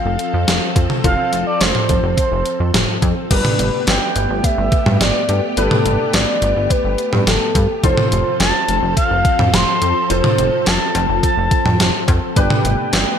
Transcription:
Already playing: string machine F3 C4 A4, grand piano C4 F4 A4, analog synth lead F5
0.05 analog synth bass F1
0.19 closed hi-hat
0.34 analog synth bass F2
0.48 analog synth bass F1, snare, closed hi-hat
0.76 analog synth bass F2, kick, closed hi-hat
0.90 mid tom
1.04 analog synth bass F1, grand piano C4 F4 A4, analog synth lead F5, kick, closed hi-hat
1.33 analog synth bass F1, closed hi-hat
1.47 analog synth lead D5
1.61 analog synth bass F1, analog synth lead C5, snare, closed hi-hat
1.75 mid tom
1.89 analog synth bass F1, kick, closed hi-hat
2.03 analog synth bass F1
2.17 analog synth lead C5, kick, closed hi-hat
2.32 analog synth bass F1
2.46 closed hi-hat
2.60 analog synth bass F2
2.74 analog synth bass F1, snare, closed hi-hat, mid tom
3.02 analog synth bass F2, kick, closed hi-hat
3.31 analog synth bass G1, string machine A3 B3 G4, grand piano D4 G4 B4, analog synth lead B4, kick, closed hi-hat, crash
3.45 mid tom
3.59 analog synth bass G1, closed hi-hat
3.87 analog synth bass G1, analog synth lead G5, snare, closed hi-hat
4.16 analog synth bass G1, closed hi-hat
4.30 analog synth bass G1
4.44 analog synth lead E5, kick, closed hi-hat
4.58 analog synth bass G1
4.72 kick, closed hi-hat
4.86 analog synth bass G2, mid tom
5.01 analog synth bass G1, analog synth lead D5, snare, closed hi-hat
5.29 analog synth bass G2, closed hi-hat
5.57 analog synth bass G1, grand piano D4 G4 B4, analog synth lead A4, closed hi-hat
5.71 mid tom
5.85 analog synth bass G1, closed hi-hat
6.13 analog synth bass G1, analog synth lead D5, snare, closed hi-hat
6.42 analog synth bass G1, closed hi-hat
6.56 analog synth bass G1
6.70 analog synth lead B4, kick, closed hi-hat
6.85 analog synth bass G1
6.98 closed hi-hat
7.13 analog synth bass G2, mid tom
7.27 analog synth bass G1, analog synth lead A4, snare, closed hi-hat
7.55 analog synth bass G2, kick, closed hi-hat
7.84 analog synth bass F1, string machine F3 C4 A4, grand piano F4 A4 C5, analog synth lead C5, kick, closed hi-hat
7.97 mid tom
8.12 analog synth bass F1, closed hi-hat
8.40 analog synth bass F1, analog synth lead A5, snare, closed hi-hat
8.68 analog synth bass F1, closed hi-hat
8.83 analog synth bass F1
8.97 analog synth lead F5, kick, closed hi-hat
9.11 analog synth bass F1
9.25 kick, closed hi-hat
9.39 analog synth bass F2, mid tom
9.53 analog synth bass F1, analog synth lead C6, snare, closed hi-hat
9.82 analog synth bass F2, closed hi-hat
10.10 analog synth bass F1, grand piano F4 A4 C5, analog synth lead C5, closed hi-hat
10.24 mid tom
10.38 analog synth bass F1, closed hi-hat
10.66 analog synth bass F1, analog synth lead A5, snare, closed hi-hat
10.95 analog synth bass F1, closed hi-hat, cowbell
11.09 analog synth bass F1
11.23 analog synth lead A5, kick, closed hi-hat
11.37 analog synth bass F1
11.51 kick, closed hi-hat
11.66 analog synth bass F2, mid tom
11.80 analog synth bass F1, snare, closed hi-hat
12.08 analog synth bass F2, kick, closed hi-hat, cowbell
12.36 analog synth bass G1, string machine A3 B3 G4, grand piano D4 G4 B4, analog synth lead G5, kick, closed hi-hat
12.50 mid tom
12.65 analog synth bass G1, closed hi-hat
12.93 analog synth bass G1, snare, closed hi-hat

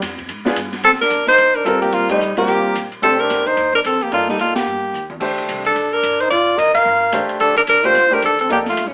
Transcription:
0.02 upright bass F2, snare, hi-hat pedal, ride
0.18 kick, ride
0.29 upright bass G#2, ride
0.45 grand piano B3 D4 F4 G#4, snare
0.56 upright bass G2, hi-hat pedal, ride
0.72 snare, ride
0.83 upright bass C2, trombone C4, alto saxophone A4, ride
0.92 snare
1.00 trombone D4, alto saxophone A#4, muted upright bass stroke, snare
1.10 upright bass D2, hi-hat pedal, ride
1.27 trombone D#4, alto saxophone C5, snare, ride
1.38 upright bass D#2, ride
1.55 trombone D4, alto saxophone A#4
1.65 upright bass G2, grand piano G3 C4 F4 A#4, trombone C4, alto saxophone A4, hi-hat pedal, ride
1.81 trombone A#3, alto saxophone G4, ride
1.92 upright bass C2, trombone A#3, alto saxophone F4, ride
2.09 trombone G3, grand piano A3 D4 G4 C5, alto saxophone D#4, muted upright bass stroke, kick, ride
2.20 upright bass A#1, hi-hat pedal
2.36 grand piano G3 C4 F4 A#4, trombone A#3, alto saxophone G4, ride
2.48 upright bass G1, ride
2.75 upright bass A#1, hi-hat pedal, ride
2.92 ride
3.02 upright bass C2, grand piano A3 D4 G4 C5, trombone C4, alto saxophone A4, ride
3.20 trombone D4, alto saxophone A#4
3.30 upright bass D2, snare, hi-hat pedal, ride
3.46 trombone D#4, alto saxophone C5, kick
3.57 upright bass D#2, ride
3.73 trombone D4, alto saxophone A#4, kick
3.84 upright bass F2, trombone C4, alto saxophone A4, hi-hat pedal, ride
4.01 trombone A#3, alto saxophone G4, ride
4.11 upright bass G2, grand piano A#3 D#4 A4 D5, trombone A#3, alto saxophone F4, ride
4.28 trombone G3, alto saxophone D#4, snare
4.39 upright bass A#2, trombone A#3, alto saxophone F4, hi-hat pedal, ride
4.55 trombone A#3, alto saxophone G4, snare, ride
4.66 upright bass G2
4.94 upright bass D#2, hi-hat pedal
5.10 high tom
5.20 upright bass D2, grand piano A3 D4 G4 C5, kick, crash
5.38 ride
5.49 upright bass C2, hi-hat pedal, ride
5.65 trombone D4, alto saxophone A4, ride
5.76 upright bass A#1, ride
5.92 trombone D4, alto saxophone A#4
6.03 upright bass G1, hi-hat pedal, ride
6.20 trombone D#4, alto saxophone C5, ride
6.31 upright bass F1, trombone F4, alto saxophone D5, ride
6.58 upright bass A#1, trombone A#4, alto saxophone D#5, hi-hat pedal, ride
6.75 trombone A#4, alto saxophone F5, kick, ride
6.85 upright bass G1
7.12 upright bass A1, grand piano A3 D4 G4 C5, hi-hat pedal, ride
7.29 muted upright bass stroke, ride
7.40 upright bass A#1, trombone D4, alto saxophone A4, ride
7.56 trombone D4, alto saxophone A#4, kick, ride
7.67 upright bass C2, trombone D4, alto saxophone A#4, hi-hat pedal, ride
7.84 grand piano A3 D4 G4 C5, trombone F4, alto saxophone C5, ride
7.95 upright bass D2, snare, ride
8.11 grand piano A3 D4 G4 C5, trombone D4, alto saxophone A#4, kick
8.22 upright bass D#2, trombone D4, alto saxophone A4, hi-hat pedal, ride
8.39 trombone C4, alto saxophone A4, ride
8.49 upright bass F2, grand piano A#3 D#4 A4 D5, trombone A#3, alto saxophone G4, ride
8.66 trombone A3, alto saxophone F4, snare, ride
8.77 upright bass G2, hi-hat pedal, ride
8.87 trombone D#3, alto saxophone C#4

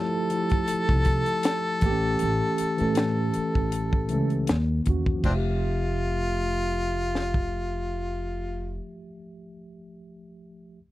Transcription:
Already playing: tine electric piano F3 A3 E4 G4 A4, harmonica A4
0.30 tine electric piano F3 A3, closed hi-hat
0.34 tine electric piano E4 G4
0.42 tine electric piano A4
0.50 kick, closed hi-hat
0.68 muted upright bass stroke, closed hi-hat
0.89 upright bass C2, kick
1.05 kick, closed hi-hat
1.26 closed hi-hat
1.43 snare, closed hi-hat
1.81 upright bass A1, tine electric piano E3 A3 A#3, kick, closed hi-hat
1.86 tine electric piano G4
1.91 tine electric piano C#4
2.19 upright bass A1, closed hi-hat
2.58 muted upright bass stroke, closed hi-hat
2.77 upright bass A2, tine electric piano E3 A3 C#4, closed hi-hat
2.82 tine electric piano A4
2.95 snare, closed hi-hat
3.34 muted upright bass stroke, closed hi-hat
3.55 upright bass A1, kick
3.72 closed hi-hat
3.93 kick
4.09 upright bass C#2, tine electric piano E3 A3, closed hi-hat
4.13 tine electric piano C#4 A4
4.30 closed hi-hat
4.47 upright bass D#2, snare, closed hi-hat
4.85 upright bass E2, tine electric piano D#3 A#3 C#4, kick, closed hi-hat
4.89 tine electric piano F#4
5.06 kick
5.16 tine electric piano F3
5.22 upright bass F1, tine electric piano A3, harmonica C4 D4 F4, kick, crash
5.29 tine electric piano E5
5.36 tine electric piano G4
7.15 snare
7.34 kick

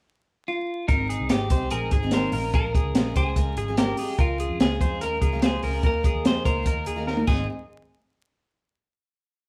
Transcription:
0.48 clean electric guitar F4
0.88 picked electric bass G#1, twelve-string acoustic guitar G#3 C4 D#4, clean electric guitar D#4 A#4, kick, closed hi-hat
0.92 twelve-string acoustic guitar G#4
1.09 clean electric guitar G#4, closed hi-hat
1.20 picked electric bass C2
1.29 picked electric bass G#1, twelve-string acoustic guitar G#3 C4 D#4 G#4, clean electric guitar G4, snare, closed hi-hat
1.49 picked electric bass C2, twelve-string acoustic guitar G#3 C4 D#4 G#4, clean electric guitar C5, kick, closed hi-hat
1.71 picked electric bass A#1, twelve-string acoustic guitar G#3 C4 D#4, clean electric guitar G#4 A#4, closed hi-hat
1.75 twelve-string acoustic guitar G#4
1.91 picked electric bass G#1, clean electric guitar G#4, kick, closed hi-hat
2.02 twelve-string acoustic guitar G#2 D#3 G#3 C4 D#4 G#4
2.11 clean electric guitar A#4 C5, snare, closed hi-hat
2.32 picked electric bass A#1, twelve-string acoustic guitar F3 G#3 C#4 G#4, clean electric guitar A#4, open hi-hat
2.53 picked electric bass A#1, twelve-string acoustic guitar F3 G#3 C#4 G#4, clean electric guitar A#4, kick, closed hi-hat
2.75 clean electric guitar G#4, kick, closed hi-hat
2.84 picked electric bass C#2
2.94 picked electric bass A#1, twelve-string acoustic guitar F3 G#3 C#4, snare, closed hi-hat
2.98 twelve-string acoustic guitar G#4
3.15 picked electric bass C#2, twelve-string acoustic guitar F3 G#3 C#4 G#4, clean electric guitar G#4 C5, kick, closed hi-hat
3.36 picked electric bass C#2, twelve-string acoustic guitar F3 G#3 C#4, clean electric guitar A#4, kick, closed hi-hat
3.40 twelve-string acoustic guitar G#4
3.56 picked electric bass G#1, clean electric guitar G#4, closed hi-hat
3.68 twelve-string acoustic guitar A#2 F3 G#3 C#4 G#4
3.77 clean electric guitar G4 A#4, snare, closed hi-hat
3.97 twelve-string acoustic guitar F3 G#3 C#4, clean electric guitar G#4, open hi-hat
4.01 twelve-string acoustic guitar G#4
4.19 picked electric bass C#2, twelve-string acoustic guitar F3 G#3 C#4, clean electric guitar F4 A#4, kick, closed hi-hat
4.23 twelve-string acoustic guitar F4
4.40 clean electric guitar G#4, closed hi-hat
4.50 picked electric bass F2
4.60 picked electric bass C#2, twelve-string acoustic guitar F3 G#3 C#4 F4, clean electric guitar G#4, snare, closed hi-hat
4.80 picked electric bass F2, twelve-string acoustic guitar F3 G#3 C#4 F4, clean electric guitar C5, kick, closed hi-hat
5.01 picked electric bass D#2, twelve-string acoustic guitar F3 G#3 C#4 F4, clean electric guitar A#4, closed hi-hat
5.21 picked electric bass C#2, clean electric guitar G#4, kick, closed hi-hat
5.32 twelve-string acoustic guitar C#3 F3 G#3 C#4 F4
5.42 clean electric guitar G#4 C5, snare, closed hi-hat
5.63 picked electric bass C#2, twelve-string acoustic guitar F3 G#3, clean electric guitar A#4, open hi-hat
5.67 twelve-string acoustic guitar C#4 F4
5.83 picked electric bass D#2, twelve-string acoustic guitar D#3 A#3 D#4 F4, clean electric guitar A#4, kick, closed hi-hat
6.04 clean electric guitar G#4, kick, closed hi-hat
6.15 picked electric bass D#2
6.24 picked electric bass F2, twelve-string acoustic guitar D#3 A#3 D#4 F4, clean electric guitar C5, snare, closed hi-hat
6.45 picked electric bass C#2, twelve-string acoustic guitar D#3 A#3 D#4 F4, clean electric guitar A#4 C5, kick, closed hi-hat
6.64 picked electric bass D#2, twelve-string acoustic guitar D#3 A#3 D#4 F4, clean electric guitar A#4, kick, closed hi-hat
6.86 picked electric bass D#2, clean electric guitar G#4, closed hi-hat
6.96 twelve-string acoustic guitar D#3 A#3 D#4 F4
7.07 clean electric guitar A#4, snare
7.17 high tom
7.27 picked electric bass G#1, twelve-string acoustic guitar G#2 D#3 G#3 C4 D#4 G#4, clean electric guitar G#4, kick, crash

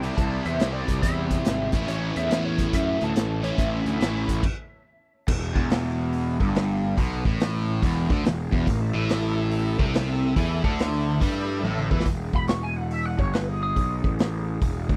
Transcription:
Already playing: tonewheel organ C4 E4 G4 C5, lead electric guitar G5
0.02 overdriven electric guitar C3 G3 C4 E4, closed hi-hat
0.12 snare
0.17 picked electric bass C2, lead electric guitar A5, kick, closed hi-hat
0.45 picked electric bass E2, lead electric guitar E5, closed hi-hat
0.60 picked electric bass C2, overdriven electric guitar C3 G3 C4 E4, snare, closed hi-hat
0.73 lead electric guitar D5
0.88 picked electric bass C2, kick, closed hi-hat
1.02 picked electric bass E2, lead electric guitar E5, kick, closed hi-hat
1.31 kick, closed hi-hat
1.45 picked electric bass G#1, snare, closed hi-hat
1.72 picked electric bass A1, overdriven electric guitar A2 E3 A3 C#4 E4, tonewheel organ C#4 E4 A4 C#5, kick, closed hi-hat
1.82 snare
1.88 picked electric bass A1, lead electric guitar C#5, closed hi-hat
2.16 picked electric bass E2, lead electric guitar E5, closed hi-hat
2.29 picked electric bass E2, overdriven electric guitar A2 E3 A3 C#4 E4, snare, closed hi-hat
2.45 lead electric guitar C#5
2.58 kick, closed hi-hat
2.73 picked electric bass F#2, lead electric guitar E5, kick, closed hi-hat
3.01 picked electric bass D2, lead electric guitar A5, closed hi-hat
3.16 picked electric bass A1, snare, closed hi-hat
3.42 overdriven electric guitar A2 E3 A3 C#4 E4, lead electric guitar C#5, closed hi-hat
3.58 picked electric bass A1, lead electric guitar E5, kick, closed hi-hat
3.86 picked electric bass D2, closed hi-hat
4.00 picked electric bass A1, overdriven electric guitar A2 E3 A3 C#4 E4, snare, closed hi-hat
4.28 picked electric bass A1, kick, closed hi-hat
4.43 kick, crash
5.28 picked electric bass E1, overdriven electric guitar E2, kick, crash
5.55 picked electric bass E1, overdriven electric guitar E2, kick
5.70 snare, open hi-hat
6.13 open hi-hat
6.40 picked electric bass G1, overdriven electric guitar G2, kick
6.55 snare, open hi-hat
6.98 picked electric bass B1, overdriven electric guitar B2, kick, open hi-hat
7.25 picked electric bass A1, overdriven electric guitar A2, kick
7.40 snare, open hi-hat
7.82 picked electric bass E1, overdriven electric guitar E2, kick, open hi-hat
8.10 picked electric bass D2, overdriven electric guitar D3, kick
8.24 picked electric bass E1, overdriven electric guitar E2, snare, open hi-hat
8.52 picked electric bass E1, overdriven electric guitar E2, kick
8.66 picked electric bass A1, overdriven electric guitar A2, tonewheel organ A#3 F4 A#4 F5, kick, open hi-hat
8.81 tonewheel organ A3 E4 A4 E5
8.94 picked electric bass A1, overdriven electric guitar A2
9.09 snare, open hi-hat
9.51 open hi-hat
9.79 picked electric bass C2, overdriven electric guitar C3, kick
9.94 snare, open hi-hat
10.36 picked electric bass E2, overdriven electric guitar E3, kick, open hi-hat
10.64 picked electric bass D2, overdriven electric guitar D3, kick
10.79 snare, open hi-hat
11.21 picked electric bass G2, overdriven electric guitar G3, kick, open hi-hat
11.63 picked electric bass A1, overdriven electric guitar A2, high tom
11.78 mid tom
11.91 picked electric bass E2, overdriven electric guitar E3, kick
12.00 snare
12.05 picked electric bass E1, kick, open hi-hat
12.33 picked electric bass E1, lead electric guitar B5, kick
12.48 lead electric guitar C#6, snare, open hi-hat
12.63 lead electric guitar G#5
12.76 lead electric guitar F#5
12.91 lead electric guitar E5, open hi-hat
13.06 lead electric guitar F#5
13.19 picked electric bass G1, lead electric guitar C#5, kick
13.33 lead electric guitar B4, snare, open hi-hat
13.49 lead electric guitar G#4
13.63 lead electric guitar G#4
13.76 picked electric bass B1, kick, open hi-hat
14.04 picked electric bass A1, kick
14.19 snare, open hi-hat
14.62 picked electric bass E1, kick, open hi-hat
14.89 picked electric bass D2, kick

